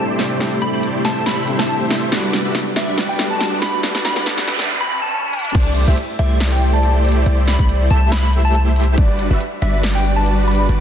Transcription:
Already playing: C3 G3 A3 C4 D4 E4 G4 C5 D5, riser
0.19 snare, closed hi-hat
0.23 closed hi-hat
0.26 closed hi-hat
0.39 G3 A3 C4 D4 E4 G4 C5 D5, snare, closed hi-hat
0.43 E4
0.62 B5, closed hi-hat
0.73 A3 E4 G4 C5 D5 B5
0.83 closed hi-hat
1.05 A3 E4 G4 C5 E5 A5, snare, closed hi-hat
1.26 B5, snare, closed hi-hat
1.46 G3 A3 C4 D4 E4, closed hi-hat
1.59 A5, snare
1.69 A5, closed hi-hat
1.91 snare, closed hi-hat
1.94 closed hi-hat
1.98 closed hi-hat
2.10 G2 G3 A3 B3 D4 F#4 B4 D5, snare, closed hi-hat
2.14 F#4
2.33 snare, closed hi-hat
2.45 G3 D4 F#4 B4 E5
2.55 snare, closed hi-hat
2.76 G3 D4 F#4 B4 D5 E5, snare, closed hi-hat
2.98 snare, closed hi-hat
3.09 G5
3.17 G3 A3 B3 D4 F#4, snare, closed hi-hat
3.31 A5
3.41 snare, closed hi-hat
3.62 B5, snare, closed hi-hat
3.66 closed hi-hat
3.69 closed hi-hat
3.81 G3 A3 B3 D4 F#4 B4 D5, snare, closed hi-hat, noise sweep
3.85 F#4
3.95 snare
4.05 B5, snare, closed hi-hat
4.16 G3 D4 F#4 B4 D5, snare
4.26 snare, closed hi-hat
4.38 snare
4.48 G3 D4 F#4 B4 E5, snare, closed hi-hat
4.59 snare
4.81 B5
5.02 A5
5.33 closed hi-hat
5.39 closed hi-hat
5.45 closed hi-hat
5.50 closed hi-hat
5.55 C2 A3 E4 G4 C5 D5, kick, closed hi-hat, crash
5.76 closed hi-hat
5.88 C2 A3 E4 G4 C5 E5
5.98 closed hi-hat
6.19 C2 A3 E4 G4 C5 D5 E5, closed hi-hat
6.40 snare, closed hi-hat
6.52 G5
6.62 closed hi-hat
6.73 A5
6.83 closed hi-hat
7.05 closed hi-hat
7.09 closed hi-hat
7.12 closed hi-hat
7.26 C2 A3 E4 G4 C5 D5, closed hi-hat
7.48 B5, snare, closed hi-hat
7.59 C2 A3 E4 G4 C5 D5 B5, kick
7.69 closed hi-hat
7.90 C2 A3 E4 G4 C5 E5 A5, closed hi-hat
8.12 B5, snare, closed hi-hat
8.33 closed hi-hat
8.45 A5
8.55 A5, closed hi-hat
8.76 closed hi-hat
8.80 closed hi-hat
8.83 closed hi-hat
8.98 G1 G3 D4 F#4 B4 D5, kick, closed hi-hat
9.19 closed hi-hat
9.30 G1 G3 D4 F#4 B4 E5
9.41 closed hi-hat
9.62 G1 G3 D4 F#4 B4 D5 E5, closed hi-hat
9.83 snare, closed hi-hat
9.95 G5
10.05 closed hi-hat
10.16 A5
10.26 closed hi-hat
10.48 B5, closed hi-hat
10.52 closed hi-hat
10.55 closed hi-hat
10.69 G1 G3 D4 F#4 B4 D5, closed hi-hat

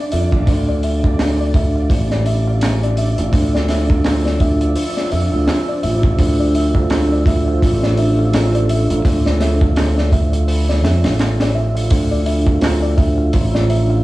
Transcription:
Already playing: D4 D5
0.12 F2 E5, open hi-hat
0.32 A1 F5, kick
0.47 D2 D4 F4 C5 E6, kick, open hi-hat
0.69 D5
0.83 E5, open hi-hat
1.04 F5, kick
1.19 C5, snare, open hi-hat, darbuka tek
1.40 D5
1.54 E5, kick, open hi-hat
1.76 F5
1.90 A1 C5, kick, open hi-hat
2.11 D5, snare
2.26 E5, open hi-hat
2.47 F5
2.61 C5, snare, open hi-hat, darbuka tek
2.83 D5, closed hi-hat
2.97 E5, open hi-hat
3.18 A1 F5, closed hi-hat
3.33 D2 C5, kick, open hi-hat
3.54 D5, snare
3.69 E5, snare, open hi-hat
3.90 F5, kick
4.04 C5, snare, open hi-hat, darbuka tek
4.25 D5, snare
4.40 E5, kick, open hi-hat
4.61 F5, closed hi-hat
4.75 C5, open hi-hat
4.97 D5, snare
5.12 F2 E5, open hi-hat
5.32 D2 F5
5.48 C5, snare, open hi-hat, darbuka tek
5.68 D5
5.83 A1 E5, open hi-hat
6.03 F5, kick
6.18 D2 A4 C5, kick, open hi-hat
6.40 D5
6.55 E5, open hi-hat
6.75 F5, kick
6.90 C5, snare, open hi-hat, darbuka tek
7.12 D5
7.26 E5, kick, open hi-hat
7.48 F5
7.62 A1 C5, kick, open hi-hat
7.83 D5, snare
7.97 E5, open hi-hat
8.19 F5
8.33 C5, snare, open hi-hat, darbuka tek
8.55 D5, closed hi-hat
8.69 E5, open hi-hat
8.90 A1 F5, closed hi-hat
9.05 D2 C5, kick, open hi-hat
9.26 D5, snare
9.41 E5, snare, open hi-hat
9.61 F5, kick
9.76 C5, snare, open hi-hat, darbuka tek
9.97 D5, snare
10.12 E5, kick, open hi-hat
10.33 F5, closed hi-hat
10.48 C5, open hi-hat
10.69 D5, snare
10.84 F2 E5, snare, open hi-hat
11.04 A1 F5, snare, open hi-hat
11.19 C5, snare, open hi-hat, darbuka tek
11.40 D5, snare, open hi-hat
11.55 E5
11.75 F5, open hi-hat
11.90 D2 D4 F4 C5 E6, kick, open hi-hat
12.11 D5
12.26 E5, open hi-hat
12.47 F5, kick
12.61 C5, snare, open hi-hat, darbuka tek
12.82 D5
12.97 E5, kick, open hi-hat
13.18 F5
13.33 A1 C5, kick, open hi-hat
13.54 D5, snare
13.70 E5, open hi-hat
13.90 F5

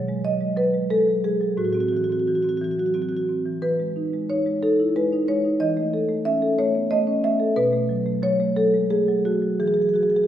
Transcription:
Already playing: B2 F#3 C#5
0.08 G#3
0.25 F#3 D#5
0.41 G#3
0.57 F#3 B4
0.74 G#3
0.90 G#3 A4
1.07 F#3
1.24 G#3 G#4
1.41 F#3
1.57 A2 F#4
1.65 F#4
1.73 C4 F#4
1.80 F#4
1.89 E3 F#4
1.97 F#4
2.04 F#4
2.10 C4 F#4
2.19 F#4
2.27 E3 F#4
2.35 F#4
2.43 C4 F#4
2.49 F#4
2.57 E3 F#4
2.64 F#4
2.71 F#4
2.78 F#3 F#4
2.86 F#4
2.94 C4 F#4
3.02 F#4
3.09 E3 F#4
3.17 F#4
3.29 C4
3.45 E3
3.62 E3 B4
3.80 G#3
3.96 D#4
4.13 G#3
4.30 D#4 C#5
4.46 G#3
4.62 D#4 A4
4.80 E4
4.96 G#3 B4
5.13 D#4
5.28 G#3 C#5
5.45 D#4
5.60 E3 D#5
5.77 A3
5.94 A4
6.09 A3
6.25 C#4 E5
6.42 A4
6.58 A3 C#5
6.75 B3
6.91 A3 D#5
7.07 C#4
7.24 A3 E5
7.40 A4
7.56 B2 B4
7.73 A3
7.89 F#3
8.06 A3
8.23 F#3 C#5
8.40 A3
8.57 F#3 A4
8.74 G#3
8.90 A3 G#4
9.08 F#3
9.25 A3 F#4
9.42 F#3
9.60 E3 G#4
9.67 G#4
9.74 F#3 G#4
9.82 G#4
9.89 G#4
9.94 F#4 G#4
10.03 G#4
10.10 F#3 G#4
10.16 G#4
10.24 G#4

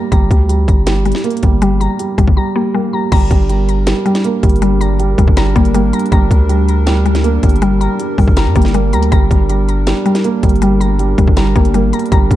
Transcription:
Already playing: G3 A#3 A#5
0.11 G1 G3 A#5, kick, closed hi-hat
0.31 D2 G3, kick, closed hi-hat
0.49 G3, closed hi-hat
0.68 G1, kick, closed hi-hat
0.86 G3, snare, closed hi-hat
1.05 G3, closed hi-hat
1.12 snare, closed hi-hat
1.18 closed hi-hat
1.24 A#3, closed hi-hat
1.30 closed hi-hat
1.37 closed hi-hat
1.43 G1 G3, kick, closed hi-hat
1.62 G3, closed hi-hat
1.80 G3 A#5, closed hi-hat
1.99 G3, closed hi-hat
2.18 G1 G3, kick, closed hi-hat
2.27 G1, kick
2.37 G3 A#5
2.56 G3 A#3
2.74 G3 A#3
2.93 G3 A#5
3.12 G1 G3 D4 A#4 A#5, kick, closed hi-hat, crash
3.30 G1 G3, kick, closed hi-hat
3.49 G3, closed hi-hat
3.69 closed hi-hat
3.87 G3, snare, closed hi-hat
4.05 G3, closed hi-hat
4.15 snare, closed hi-hat
4.24 A#3, closed hi-hat
4.43 G1 G3, kick, closed hi-hat
4.49 closed hi-hat
4.56 closed hi-hat
4.62 G3, closed hi-hat
4.80 G3 A#5, closed hi-hat
5.00 G3, closed hi-hat
5.18 F1 G3, kick, closed hi-hat
5.28 G1, kick
5.37 G3 A#5, snare, closed hi-hat
5.55 G1 G3 A#3, kick, closed hi-hat
5.65 closed hi-hat
5.74 G3 A#3, closed hi-hat
5.84 G#1
5.93 G3 A#5, closed hi-hat
5.99 closed hi-hat
6.06 closed hi-hat
6.12 G1 G3 A#5, kick, closed hi-hat
6.31 D2 G3, kick, closed hi-hat
6.49 G3, closed hi-hat
6.68 closed hi-hat
6.86 G3, snare, closed hi-hat
7.05 G3, closed hi-hat
7.15 snare, closed hi-hat
7.24 A#3, closed hi-hat
7.43 G1 G3, kick, closed hi-hat
7.49 closed hi-hat
7.56 closed hi-hat
7.62 G3, closed hi-hat
7.80 G3 A#5, closed hi-hat
7.99 G3, closed hi-hat
8.18 G1 G3, kick, open hi-hat
8.28 G1, kick
8.37 G3 A#5, snare, closed hi-hat
8.46 G2
8.56 G1 G3 A#3, kick, closed hi-hat
8.62 snare, closed hi-hat
8.68 closed hi-hat
8.74 G3 A#3, closed hi-hat
8.93 D2 G3 A#5, closed hi-hat, open hi-hat
9.02 closed hi-hat
9.11 G1 G3 D4 A#5, kick, closed hi-hat
9.30 G1 G3, kick, closed hi-hat
9.49 G3, closed hi-hat
9.69 closed hi-hat
9.87 G3, snare, closed hi-hat
10.05 G3, closed hi-hat
10.15 snare, closed hi-hat
10.24 A#3, closed hi-hat
10.43 G1 G3, kick, closed hi-hat
10.49 closed hi-hat
10.56 closed hi-hat
10.62 G3, closed hi-hat
10.80 G3 A#5, closed hi-hat
10.99 G3, closed hi-hat
11.18 F1 G3, kick, closed hi-hat
11.28 G1, kick
11.37 G3 A#5, snare, closed hi-hat
11.55 G1 G3 A#3, kick, closed hi-hat
11.65 closed hi-hat
11.74 G3 A#3, closed hi-hat
11.84 G#1
11.93 G3 A#5, closed hi-hat
11.99 closed hi-hat
12.06 closed hi-hat
12.12 G1 G3 A#4 A#5, kick, closed hi-hat
12.31 D2 G3, kick, closed hi-hat

